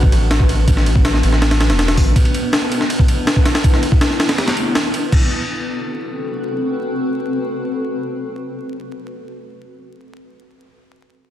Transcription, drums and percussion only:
0.03 kick
0.12 ride
0.31 snare, ride
0.40 kick
0.49 ride
0.68 kick, ride
0.77 snare
0.86 ride
0.96 kick
1.05 snare, ride
1.14 snare
1.23 ride
1.33 snare
1.42 snare, ride
1.51 snare, ride
1.60 snare, ride
1.70 snare, ride
1.79 snare, ride
1.88 snare, ride
1.97 kick, open hi-hat
2.16 kick, ride
2.25 ride
2.35 ride
2.53 snare, ride
2.72 ride
2.81 snare
2.90 ride
2.99 kick
3.08 ride
3.27 snare, ride
3.36 kick
3.46 snare, ride
3.55 snare, ride
3.64 kick, ride
3.74 snare
3.83 ride
3.92 kick
4.01 snare, ride
4.11 snare
4.20 snare, ride
4.29 snare, ride
4.38 snare, ride
4.48 snare, ride
4.57 ride
4.75 snare, ride
4.94 ride
5.12 kick, crash

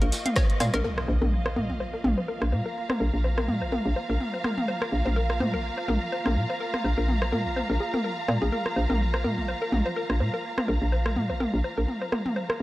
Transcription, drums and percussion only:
0.02 closed hi-hat
0.12 snare, open hi-hat, tambourine
0.26 closed hi-hat, high tom
0.36 kick, cross-stick, snare, closed hi-hat, tambourine
0.50 closed hi-hat
0.60 cross-stick, open hi-hat, mid tom, tambourine
0.74 cross-stick, closed hi-hat, high tom
0.84 high tom
0.98 cross-stick
1.22 high tom
1.46 cross-stick
1.56 mid tom
1.70 high tom
2.04 mid tom, high tom
2.42 cross-stick
2.52 high tom
2.90 cross-stick, high tom
3.38 cross-stick, high tom
3.48 mid tom
3.72 high tom
4.20 high tom
4.44 cross-stick, mid tom
4.58 high tom
4.82 cross-stick
5.06 high tom
5.30 cross-stick
5.40 mid tom, high tom
5.88 mid tom, high tom
6.26 cross-stick, high tom
6.74 cross-stick, high tom
7.08 high tom
7.22 cross-stick
7.32 mid tom
7.56 high tom
7.94 high tom
8.28 cross-stick, mid tom
8.42 high tom
8.52 high tom
8.66 cross-stick
8.90 high tom
9.14 cross-stick
9.25 mid tom
9.38 high tom
9.72 mid tom, high tom
10.10 cross-stick
10.20 high tom
10.58 cross-stick, high tom
11.06 cross-stick, high tom
11.16 mid tom
11.40 high tom
11.88 high tom
12.12 cross-stick, mid tom
12.26 high tom
12.50 cross-stick

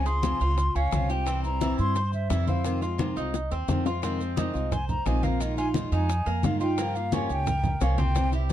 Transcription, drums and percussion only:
0.06 high bongo, high conga, maracas
0.23 high bongo, high conga, maracas
0.41 high conga, maracas
0.58 high bongo, high conga, maracas
0.75 high bongo, high conga, maracas
0.92 high bongo, low bongo, high conga, maracas
1.10 high bongo, high conga, maracas
1.27 high bongo, high conga, maracas
1.44 high conga, maracas
1.61 high bongo, high conga, maracas
1.78 high conga, maracas
1.95 high bongo, high conga, maracas
2.13 high conga, maracas
2.30 high bongo, low bongo, high conga, maracas
2.48 high conga, maracas
2.65 high bongo, high conga, maracas
2.82 high bongo, high conga, maracas
2.99 high bongo, high conga, maracas
3.16 high conga, maracas
3.34 high bongo, high conga, maracas
3.51 low bongo, high conga, maracas
3.68 low bongo, high conga, maracas
3.86 low bongo, high conga, maracas
4.03 high bongo, high conga, maracas
4.20 high conga, maracas
4.37 high bongo, high conga, maracas
4.55 high conga, maracas
4.72 high bongo, high conga, low conga, maracas
4.89 high conga, low conga, maracas
5.06 high bongo, low bongo, high conga, maracas
5.23 high conga, maracas
5.40 high bongo, high conga, maracas
5.57 high bongo, high conga, maracas
5.74 high bongo, high conga, maracas
5.92 high conga, maracas
6.09 high bongo, high conga, maracas
6.26 high bongo, high conga, maracas
6.43 high bongo, low bongo, high conga, maracas
6.60 high bongo, high conga, maracas
6.78 high bongo, high conga, maracas
6.95 high conga, maracas
7.12 high bongo, high conga, maracas
7.29 high conga, maracas
7.47 high bongo, high conga, low conga, maracas
7.64 high conga, low conga, maracas
7.81 high bongo, low bongo, high conga, maracas
7.98 high conga, maracas
8.15 high bongo, high conga, maracas
8.32 high bongo, maracas
8.50 maracas

